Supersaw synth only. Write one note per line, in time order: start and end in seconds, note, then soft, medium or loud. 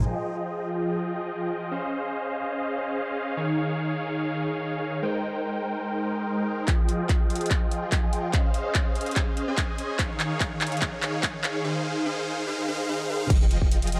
0.06 1.69 F3 medium
0.06 1.69 F4 medium
0.06 1.69 G#4 medium
0.06 1.69 D#5 medium
0.06 1.69 G5 medium
1.71 3.35 C#4 medium
1.71 3.35 G#4 medium
1.71 3.35 C5 medium
1.71 3.35 D#5 medium
1.71 3.35 F5 medium
3.37 5.00 D#3 medium
3.37 5.00 D#4 medium
3.37 5.00 G#4 medium
3.37 5.00 C#5 medium
3.37 5.00 F5 medium
5.02 6.66 G#3 medium
5.02 6.66 D#4 medium
5.02 6.66 A#4 medium
5.02 6.66 C5 medium
5.02 6.66 G5 medium
6.68 7.80 F3 medium
6.68 7.80 F4 medium
6.68 7.80 G#4 medium
6.68 7.80 D#5 medium
6.68 7.80 G5 loud
7.82 8.00 F3 medium
7.82 8.00 F4 medium
7.82 8.00 G#4 medium
7.82 8.00 D#5 medium
7.82 8.00 G5 medium
8.03 8.10 F3 medium
8.03 8.10 F4 medium
8.03 8.10 G#4 medium
8.03 8.10 D#5 medium
8.03 8.10 G#5 loud
8.13 8.31 F3 medium
8.13 8.31 F4 medium
8.13 8.31 G#4 medium
8.13 8.31 D#5 medium
8.13 8.31 G5 loud
8.34 9.14 C#4 loud
8.34 9.14 G#4 medium
8.34 9.14 C5 medium
8.34 9.14 D#5 medium
8.34 9.14 F5 loud
9.16 9.45 C#4 medium
9.16 9.45 G#4 medium
9.16 9.45 C5 medium
9.16 9.45 D#5 medium
9.16 9.45 F5 medium
9.48 9.97 C#4 loud
9.48 9.97 G#4 medium
9.48 9.97 C5 medium
9.48 9.97 D#5 medium
9.48 9.97 G#5 loud
9.99 10.80 D#3 medium
9.99 10.80 D#4 medium
9.99 10.80 G#4 medium
9.99 10.80 C#5 medium
9.99 10.80 F5 loud
10.82 11.63 D#3 medium
10.82 11.63 D#4 medium
10.82 11.63 G#4 medium
10.82 11.63 C#5 medium
10.82 11.63 F5 loud
11.64 12.04 D#3 loud
11.64 12.04 D#4 medium
11.64 12.04 G#4 medium
11.64 12.04 C5 medium
11.64 12.04 F5 loud
12.06 12.46 D#3 loud
12.06 12.46 D#4 medium
12.06 12.46 G#4 medium
12.06 12.46 C5 medium
12.06 12.46 F5 loud
12.47 12.66 D#3 medium
12.47 12.66 D#4 medium
12.47 12.66 G#4 medium
12.47 12.66 C5 medium
12.47 12.66 F5 loud
12.68 12.87 D#3 loud
12.68 12.87 D#4 medium
12.68 12.87 G#4 medium
12.68 12.87 C5 medium
12.68 12.87 F5 loud
12.89 13.08 D#3 loud
12.89 13.08 D#4 medium
12.89 13.08 G#4 medium
12.89 13.08 C5 medium
12.89 13.08 F5 loud
13.10 13.29 D#3 loud
13.10 13.29 D#4 medium
13.10 13.29 G#4 loud
13.10 13.29 C5 loud
13.10 13.29 F5 loud
13.30 14.00 F3 loud
13.30 14.00 F4 medium
13.30 14.00 G#4 medium
13.30 14.00 D#5 medium
13.30 14.00 G5 loud